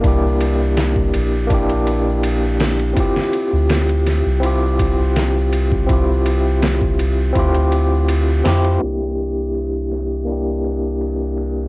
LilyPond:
<<
  \new Staff \with { instrumentName = "Tine electric piano" } { \time 4/4 \key c \mixolydian \tempo 4 = 82 <bes d' e' g'>2 <bes d' e' g'>2 | <c' e' f' g'>2 <c' e' f' g'>2 | <c' e' f' g'>2 <c' e' f' g'>4. <c' e' f' g'>8 | <bes d' e' g'>2 <bes d' e' g'>2 | }
  \new Staff \with { instrumentName = "Sub bass" } { \clef bass \time 4/4 \key c \mixolydian c,4. bes,,2~ bes,,8 | r8. d,4 c,2~ c,16~ | c,2 d,4. f,8 | c,1 | }
  \new DrumStaff \with { instrumentName = "Drums" } \drummode { \time 4/4 <bd cymr>8 cymr8 <cymr sn>16 bd16 cymr8 <bd cymr>16 cymr16 cymr8 cymr8 <hho sn>16 cymr16 | <bd cymr>16 sn16 cymr8 <cymr sn>16 cymr16 <cymr sn>8 cymr8 <bd cymr>8 <cymr sn>8 cymr16 bd16 | <bd cymr>8 cymr8 <cymr sn>16 bd16 cymr8 <bd cymr>16 cymr16 cymr8 cymr8 <hho sn>16 cymr16 | cymr16 sn16 cymr8 cymr16 cymr16 <cymr sn>8 cymr8 cymr8 cymr8 cymr8 | }
>>